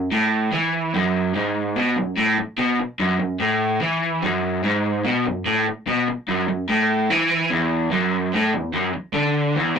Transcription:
0.11 A2
0.53 E3
0.94 F#2
1.34 G#2
1.76 B2
1.96 F#2
2.17 A2
2.38 muted overdriven electric guitar stroke
2.58 B2
2.80 muted overdriven electric guitar stroke
2.99 F#2
3.20 F#2
3.40 A2
3.82 E3
4.22 F#2
4.64 G#2
5.05 B2
5.25 F#2
5.46 A2
5.67 muted overdriven electric guitar stroke
5.87 B2
6.08 muted overdriven electric guitar stroke
6.28 F#2
6.48 F#2
6.69 A2
7.10 E3
7.50 E2
7.91 F#2
8.34 A2
8.54 E2
8.73 F#2
8.94 muted overdriven electric guitar stroke
9.14 D3
9.56 E2
9.76 B2

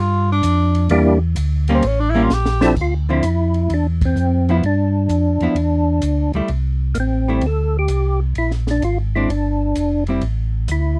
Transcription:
Already playing: G2
0.00 F4
0.32 D4
0.43 F2, hi-hat pedal, ride
0.75 ride
0.89 E2 G3 A#3 D4 E4 G4, ride
1.36 D2, hi-hat pedal, ride
1.68 G3 A#3 C#4, ride
1.75 C4
1.82 A1, ride
1.87 C#4
2.00 D4
2.10 E4
2.15 G3 A#3 C#4
2.24 F4
2.30 A#1, snare, hi-hat pedal
2.34 G4
2.46 snare
2.61 F3 C4 D4 E4 A4, snare
2.76 D2, kick, crash
2.81 F4
3.09 D3 F3 C4 E4
3.23 F2, hi-hat pedal, ride
3.54 ride
3.70 E2 D4, ride
4.01 C4, kick, ride
4.16 F2, hi-hat pedal
4.49 F3 B3 E4, ride
4.63 G2 D4, ride
5.09 F2, hi-hat pedal, ride
5.40 F2 F3 B3 E4, ride
5.55 E2, ride
6.02 D2, hi-hat pedal, ride
6.33 D2 G3 A3 E4, ride
6.48 C2, ride
6.95 A1 A#3, hi-hat pedal, ride
7.00 C4
7.28 G3 A3 E4
7.41 D2, ride
7.46 A4
7.79 G4
7.88 C2, hi-hat pedal, ride
8.35 A#1 E4, ride
8.51 snare
8.67 D4, snare
8.82 G#1 F4, hi-hat pedal, ride
9.15 G#3 C4 D4 E4
9.29 G1 D4, ride
9.75 F1, hi-hat pedal, ride
10.07 G3 C4 E4, ride
10.21 A1, ride
10.68 D2 E4, hi-hat pedal, ride

